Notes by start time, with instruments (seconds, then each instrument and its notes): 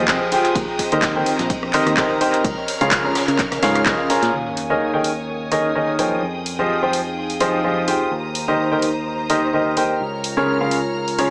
Already playing: ambient pad F4 G#4 D#5 G5, violin section G#4 G5 D#6
0.08 fingered electric bass C3, grand piano F3 F4 G4 G#4 C5 D#5, kick, snare, clap, ride
0.21 ride
0.31 grand piano F4 G4 G#4 C5 G5, open hi-hat, ride
0.44 snare, closed hi-hat
0.55 fingered electric bass D#2, ambient pad C4, violin section C5 A#5, kick, closed hi-hat, ride
0.79 kick, open hi-hat, ride
0.92 fingered electric bass D#2, grand piano D#3 D#4 G4 A#4 C5 D#5, closed hi-hat
1.02 kick, snare, clap, closed hi-hat, ride
1.16 grand piano D#3 D#4 G4 A#4 C5 G5
1.22 ambient pad A#4
1.26 open hi-hat, ride
1.39 fingered electric bass A#1, snare, closed hi-hat
1.50 kick, closed hi-hat, ride
1.63 fingered electric bass A#1, cross-stick
1.73 grand piano D#3 D#4 G4 A#4 C5 D#5, clap, open hi-hat, ride
1.86 fingered electric bass D#2, cross-stick, closed hi-hat
1.97 fingered electric bass C3, grand piano D#3 D#4 G4 A#4 C5 D#5, kick, snare, clap, ride
2.21 grand piano D#4 G4 A#4 C5 G5, open hi-hat
2.34 closed hi-hat
2.44 fingered electric bass C#2, ambient pad C#4, violin section C#5 F6, kick, closed hi-hat, ride
2.68 open hi-hat, ride
2.81 fingered electric bass C#2, grand piano C#3 F4 G#4 A#4 C#5 F5, closed hi-hat
2.91 kick, snare, clap, closed hi-hat, ride
3.05 grand piano C#3 F4 G#4 A#4 C#5 A#5
3.15 cross-stick, snare, open hi-hat, ride
3.28 fingered electric bass C#3, ambient pad F5 G#5, closed hi-hat
3.39 kick, snare, clap, closed hi-hat, ride
3.52 fingered electric bass C#3, cross-stick, snare, open hi-hat
3.62 fingered electric bass G#2, grand piano C#3 F4 G#4 A#4 C#5 F5, kick, snare, open hi-hat, ride
3.75 cross-stick, closed hi-hat
3.86 grand piano C#3 F4 G#4 A#4 C#5 D#5, kick, snare, clap, ride
4.09 grand piano F4 G#4 A#4 C#5 A#5, snare, open hi-hat, ride
4.23 fingered electric bass A#2, snare, closed hi-hat
4.33 fingered electric bass D#2, violin section C#5 G#5 D#6, sub drop
4.57 open hi-hat
4.70 grand piano D#3 D#4 G#4 A#4 C#5 D#5
4.94 grand piano D#3 D#4 G#4 A#4 C#5 G5
5.04 open hi-hat
5.20 ambient pad D#5
5.52 grand piano D#3 D#4 G#4 A#4 C#5 D#5, open hi-hat
5.75 grand piano D#3 D#4 G#4 A#4 C#5 D#5
5.99 grand piano F3 D#4 G#4 A#4 C#5 G5, open hi-hat
6.22 fingered electric bass F2, ambient pad D#4, violin section G#4 G5
6.44 ambient pad G5, open hi-hat
6.59 grand piano F3 F4 G4 G#4 C5 D#5
6.63 ambient pad F5
6.73 ambient pad G#4
6.83 grand piano F3 F4 G4 G#4 C5 G5
6.93 open hi-hat
7.30 open hi-hat
7.40 grand piano F3 F4 G4 G#4 C5 D#5, open hi-hat
7.64 grand piano F3 F4 G4 G#4 C5 D#5
7.88 grand piano F4 G4 G#4 C5 G5, open hi-hat
8.11 fingered electric bass D#2, violin section C5 A#5
8.35 open hi-hat
8.48 grand piano D#3 D#4 G4 A#4 C5 D#5
8.63 ambient pad C5
8.72 grand piano D#3 D#4 G4 A#4 C5 G5
8.79 ambient pad A#4, open hi-hat
9.30 grand piano D#3 D#4 G4 A#4 C5 D#5, open hi-hat
9.53 grand piano D#3 D#4 G4 A#4 C5 D#5
9.77 grand piano D#4 G4 A#4 C5 G5, open hi-hat
10.00 fingered electric bass C#2, ambient pad F4, violin section C#5 A#5 F6
10.24 open hi-hat
10.37 grand piano C#3 C#4 F4 G#4 A#4 C#5
10.45 ambient pad C#5
10.61 grand piano C#3 C#4 F4 G#4 A#4 F5
10.71 ambient pad G#5, open hi-hat
11.08 open hi-hat
11.18 grand piano C#3 C#4 F4 G#4 A#4 C#5, open hi-hat